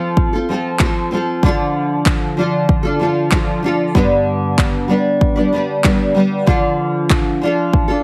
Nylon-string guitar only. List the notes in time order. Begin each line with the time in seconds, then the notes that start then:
Already playing: F3 C4 F4 A4
0.33 C4 F4 A4
0.49 F3 C4 F4 A4
0.80 F3 C4 F4 A4
1.11 F3 C4 F4 A4
1.44 D3 F3 D4 F4 A4
2.37 F3 D4 F4 A4
2.83 D4 F4 A4
3.00 F3 D4 F4 A4
3.31 F3 D4 F4 A4
3.63 F3 D4 F4 A4
3.95 G2 D3 G3 B3 D4 B4
4.88 G3 B3 D4 B4
5.36 G3 B3 D4 B4
5.53 G3 B3 D4 B4
5.85 G3 B3 D4 B4
6.14 G3 B3 D4 B4
6.46 D3 F3 D4 F4 A4
7.42 F3 D4 F4 A4
7.88 D4 F4 A4